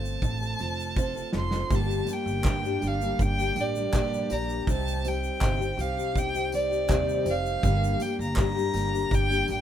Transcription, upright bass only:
0.00 0.16 G1 medium
0.22 0.53 A1 loud
0.60 1.21 F1 medium
1.34 1.64 F1 medium
1.70 2.01 G1 loud
2.26 2.41 G1 medium
2.45 2.75 G2 loud
2.83 3.13 G1 medium
3.19 3.50 G1 medium
3.56 3.86 A1 medium
3.93 4.24 A#1 medium
4.31 4.61 A#1 medium
4.67 5.28 C2 loud
5.41 5.71 G1 medium
5.77 6.85 C2 medium
6.89 7.20 D#2 medium
7.26 7.56 F1 medium
7.63 7.94 G1 loud
8.19 8.34 G1 medium
8.37 8.68 G2 loud
8.74 9.05 G1 medium
9.11 9.42 G1 loud
9.49 9.61 A1 medium

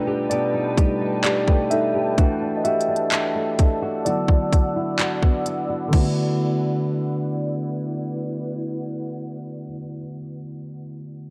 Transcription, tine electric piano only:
0.00 0.78 G3 medium
0.00 0.78 A3 medium
0.00 2.20 D4 medium
0.00 0.79 D#4 medium
0.00 2.20 F4 medium
0.00 1.73 A4 medium
0.00 0.27 B4 medium
0.00 0.30 D5 loud
0.30 1.21 G4 medium
0.30 1.20 D5 medium
0.78 1.20 G3 soft
0.78 1.21 A3 soft
0.78 1.21 D#4 medium
1.24 1.47 G4 medium
1.24 1.45 D5 medium
1.70 2.55 A4 medium
1.70 2.60 E5 loud
2.18 4.02 A3 soft
2.18 4.02 D4 medium
2.18 4.02 F#4 medium
2.57 2.65 D#5 medium
2.64 4.02 G4 medium
2.64 4.09 E5 loud
4.05 5.89 F#3 medium
4.05 5.89 B3 soft
4.05 5.90 E4 medium
4.05 5.43 F#4 medium
4.05 5.42 D5 medium
5.91 9.66 D3 medium
5.91 9.68 A3 medium
5.91 9.70 B3 medium
5.95 9.71 E4 medium
5.95 9.73 F#4 medium

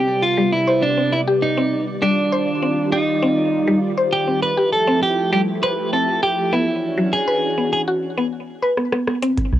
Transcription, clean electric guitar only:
0.00 0.23 G4 medium
0.22 0.50 F4 medium
0.53 0.83 E4 medium
0.83 1.13 D4 medium
1.13 1.21 E4 medium
1.42 1.84 D#4 medium
2.02 2.92 D4 medium
2.92 3.78 D#4 medium
4.13 4.42 G4 medium
4.43 4.72 B4 loud
4.73 5.02 A4 medium
5.03 5.31 G4 medium
5.32 5.41 G4 medium
5.63 5.92 B4 loud
5.93 6.22 A4 medium
6.23 6.53 G4 medium
6.53 7.14 E4 medium
7.13 7.71 G#4 medium
7.73 7.81 G#4 medium

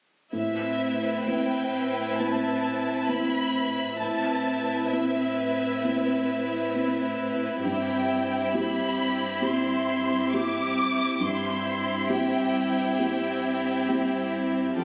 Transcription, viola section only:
0.33 3.96 C4 soft
0.33 3.96 E4 soft
4.00 7.61 C4 soft
4.00 7.60 E4 soft
7.63 11.18 C4 soft
7.63 11.18 E4 soft
11.22 14.72 C4 soft
11.22 14.72 E4 soft
14.75 14.84 C4 soft
14.75 14.84 F4 soft

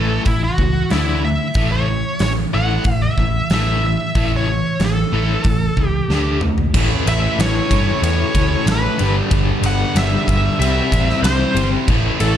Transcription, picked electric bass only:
0.00 0.17 A1 medium
0.26 0.49 A1 medium
0.59 0.82 C#2 medium
0.92 1.37 D2 medium
1.55 2.02 A1 medium
2.21 2.44 A1 medium
2.54 2.77 A1 medium
2.85 3.08 A1 medium
3.18 3.41 A1 medium
3.50 3.96 A1 medium
4.15 4.61 A1 medium
4.80 5.03 A1 medium
5.13 5.35 A1 medium
5.45 5.68 A1 medium
5.77 6.00 C#2 medium
6.09 6.55 D2 medium
6.74 6.94 A1 medium
7.06 7.26 A1 medium
7.39 7.59 A1 medium
7.71 7.91 G2 medium
8.02 8.22 E2 medium
8.35 8.55 D2 medium
8.66 8.87 A1 loud
9.00 9.20 G1 medium
9.31 9.51 G1 medium
9.62 9.83 G1 medium
9.95 10.15 G1 loud
10.28 10.48 G1 medium
10.59 10.79 C2 medium
10.92 11.12 A1 medium
11.23 11.43 C2 loud
11.55 11.75 G1 loud
11.89 12.08 A1 medium
12.21 12.37 A1 medium

